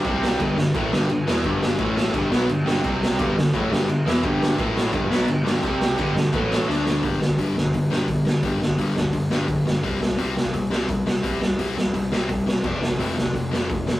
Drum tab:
CC |x---x---x---x---|x---x---x---x---|x---x---x---x---|x---x---x---x---|
HH |----------------|----------------|----------------|----------------|
SD |--o---o---o---o-|--o---o---o---o-|--o---o---o---o-|--o---o---o---o-|
BD |o---o---o-------|o---o---o-------|o---o---o-------|o---o---o-------|

CC |x---x---x-------|----------------|----------------|----------------|
HH |----------------|o---o---o---o---|o---o---o---o---|o---o---o---o---|
SD |--o---o---o-o-o-|--o---o---o---o-|--o---o---o---o-|--o---o---o---o-|
BD |o---o---o-------|o--oo--oo---o---|o--oo--oo---o---|o--oo--oo---o---|

CC |----------------|x---------------|
HH |o---o---o---o---|----o---o---o---|
SD |--o---o---o---o-|--o---o---o---o-|
BD |o--oo--oo---o---|o--oo--oo---o---|